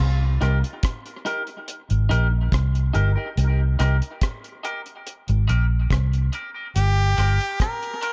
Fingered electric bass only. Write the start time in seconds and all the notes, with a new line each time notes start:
0.00 C2
0.42 C2
1.91 G#1
2.11 A#1
2.52 C2
2.95 G1
3.38 C2
3.80 C2
5.29 G#1
5.49 A#1
5.91 C2
6.76 G1
7.18 G1